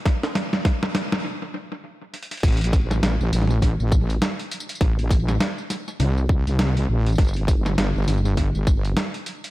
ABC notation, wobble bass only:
X:1
M:4/4
L:1/16
Q:"Swing 16ths" 1/4=101
K:Am
V:1 name="Wobble bass" clef=bass
z16 | A,,,4 A,,, A,,, A,,,3 A,,,3 z4 | A,,,4 z4 C,,3 C,,3 A,,,2 | G,,,4 G,,, G,,, G,,,3 G,,,3 z4 |]